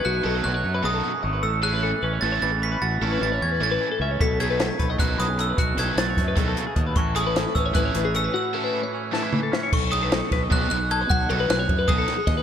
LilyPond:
<<
  \new Staff \with { instrumentName = "Glockenspiel" } { \time 7/8 \key b \mixolydian \tempo 4 = 152 fis'''4 fis'''4 dis'''4 r8 | e'''8 fis'''4 r8 a'''8 a'''8 b'''8 | a'''4 a'''8 gis'''8 a'''4. | b'''8 gis'''4. fis'''8 dis'''8 e'''8 |
fis'''8 gis'''8 a'''2 r8 | cis'''8 dis'''4 e'''8 fis'''4 e'''8 | e'''2. r8 | cis'''8 dis'''4 r8 fis'''8 fis'''8 gis'''8 |
fis'''4 fis'''4 dis'''4 r8 | }
  \new Staff \with { instrumentName = "Clean electric guitar" } { \time 7/8 \key b \mixolydian fis'8 a'16 b'8 cis''8 b'16 gis'16 a'8 gis'16 dis''16 b'16 | a'8 gis'16 b'16 a'8 b'16 cis''16 b'16 cis''16 b'16 gis'16 a'16 b'16 | fis'8 a'16 b'8 cis''8 b'16 a'16 b'8 a'16 e''16 cis''16 | a'8 gis'16 b'16 a'8 b'16 dis''16 b'16 cis''16 b'16 gis'16 a'16 b'16 |
fis'8 a'16 b'8 cis''8 b'16 gis'16 a'8 gis'16 dis''16 b'16 | a'8 gis'16 b'16 a'8 b'16 cis''16 b'16 cis''16 b'16 gis'16 a'16 b'16 | fis'8 a'16 b'8 cis''8 b'16 a'16 b'8 a'16 e''16 cis''16 | a'8 gis'16 b'16 a'8 b'16 dis''16 b'16 cis''16 b'16 gis'16 a'16 b'16 |
fis'8 a'16 b'8 cis''8 b'16 gis'16 a'8 gis'16 dis''16 b'16 | }
  \new Staff \with { instrumentName = "Overdriven electric guitar" } { \time 7/8 \key b \mixolydian r8 <fis b dis' a'>8 r4 <fis b dis' a'>8 r4 | r8 <a cis' e' a'>8 r4 <a cis' e' a'>8 r4 | r8 <a cis' e' a'>8 r4 <a cis' e' a'>8 r4 | r8 <fis b dis' a'>8 r4 <fis b dis' a'>8 r4 |
r8 <fis b dis' a'>8 r4 <fis b dis' a'>8 r4 | r8 <a cis' e' a'>8 r4 <a cis' e' a'>8 r4 | r8 <a cis' e' a'>8 r4 <a cis' e' a'>8 r4 | r8 <fis b dis' a'>8 r4 <fis b dis' a'>8 r4 |
r8 <fis b dis' a'>8 r4 <fis b dis' a'>8 r4 | }
  \new Staff \with { instrumentName = "Clean electric guitar" } { \clef bass \time 7/8 \key b \mixolydian << { a8 a4 a4. a8~ | a8 cis'4 cis'4. cis'8 | r8 cis'4 cis'4. cis'8 | r8 a4 a4. a8~ |
a8 a4 a2 | <e cis' e' fis'>8 cis'4 cis'4. cis'8 | r8 cis'4 cis'4. cis'8 | r2. r8 |
r2. r8 | } \\ { b,4 fis4 fis,8 fis4 | a,4 e4 e8 e4 | a,4 e4 e8 e4 | b,4 fis4 fis,8 fis4 |
b,4 fis4 dis8 cis8 b,8 | a,4 e4 e8 e4 | a,4 e4 e8 e4 | r2. r8 |
r2. r8 | } >> }
  \new Staff \with { instrumentName = "Fingered electric bass" } { \clef bass \time 7/8 \key b \mixolydian b,,8 b,,8 b,,8 fis,8 b,,8 r8 gis,,8 | a,,4. a,,8 a,,8 a,,4 | a,,8 a,,8 a,,8 e,8 a,,8 r8 cis,8 | b,,4. b,,8 b,,8 b,,4 |
b,,8 b,,8 b,,8 fis,8 b,,8 r8 dis,8 | a,,4. a,,8 a,,8 a,,4 | r2. r8 | b,,4. b,,8 b,,8 b,,4 |
b,,8 b,,8 b,,8 fis,8 b,,8 r8 dis,8 | }
  \new DrumStaff \with { instrumentName = "Drums" } \drummode { \time 7/8 r4 r4 r4. | r4 r4 r4. | r4 r4 r4. | <hh bd>8 hh8 <hh sn>8 <hh bd>8 <hh bd>8 <hh sn>8 hh8 |
<hh bd>8 <hh sn>8 <hh sn>8 <hh bd sn>8 <hh bd sn>8 hh8 <hh bd>8 | <hh bd>8 hh8 <hh sn>8 <hh bd>8 <hh bd>8 <hh sn>8 hh8 | r4 r4 sn8 toml8 sn8 | <cymc bd>8 cymr8 <cymr sn>8 <bd cymr sn>8 <bd cymr>8 cymr8 cymr8 |
<bd cymr>8 cymr8 <cymr sn>8 <bd cymr>8 <bd cymr>8 <cymr sn>8 <bd cymr sn>8 | }
>>